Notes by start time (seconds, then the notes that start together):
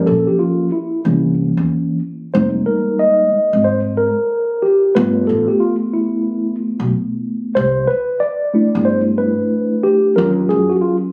Already playing: F3 A#3 C#4
0.06 A#1 A4
0.27 G4
0.39 F4
0.72 E4
1.05 C2 E3 A#3 C#4
1.57 E2
2.34 F1 G3 G#3 A#3 D#4 C5
2.66 A#4
2.99 D#5
3.53 G#1
3.64 C5
3.97 A#4
4.62 G4
4.95 G1 A3 B3 F4 B4
5.27 A1 A4
5.48 G4
5.60 F4
5.94 E4
6.80 B1
7.55 C2 C5
7.88 B4
8.20 D5
8.54 A3 D4 E4
8.75 G1
8.85 C5
9.18 B4
9.83 G4
10.16 D#2 F#3 C#4 F4 A#4
10.49 F#2 G#4
10.70 F#4
10.82 F4